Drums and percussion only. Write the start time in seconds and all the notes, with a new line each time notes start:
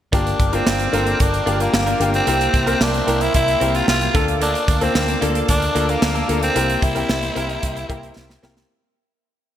0.13 kick, closed hi-hat
0.27 closed hi-hat
0.40 kick, closed hi-hat
0.53 closed hi-hat
0.67 snare
0.80 closed hi-hat
0.93 closed hi-hat
1.07 closed hi-hat
1.20 kick, closed hi-hat
1.34 closed hi-hat
1.47 closed hi-hat
1.60 closed hi-hat
1.74 snare
1.87 closed hi-hat
2.01 closed hi-hat
2.14 closed hi-hat
2.27 closed hi-hat
2.41 closed hi-hat
2.54 kick, closed hi-hat
2.67 closed hi-hat
2.81 snare
2.94 closed hi-hat
3.08 closed hi-hat
3.21 closed hi-hat
3.34 kick, closed hi-hat
3.48 closed hi-hat
3.61 closed hi-hat
3.75 closed hi-hat
3.88 snare
4.01 closed hi-hat
4.15 kick, closed hi-hat
4.28 closed hi-hat
4.41 closed hi-hat
4.55 closed hi-hat
4.68 kick, closed hi-hat
4.81 closed hi-hat
4.95 snare
5.08 closed hi-hat
5.22 closed hi-hat
5.35 closed hi-hat
5.48 kick, closed hi-hat
5.62 closed hi-hat
5.76 closed hi-hat
5.89 closed hi-hat
6.02 snare
6.16 closed hi-hat
6.29 closed hi-hat
6.43 closed hi-hat
6.56 closed hi-hat
6.69 closed hi-hat
6.82 kick, closed hi-hat
6.96 closed hi-hat
7.09 snare
7.23 closed hi-hat
7.36 closed hi-hat
7.49 closed hi-hat
7.63 kick, closed hi-hat
7.76 closed hi-hat
7.90 kick, closed hi-hat
8.03 closed hi-hat
8.17 snare
8.30 snare
8.43 snare
8.57 snare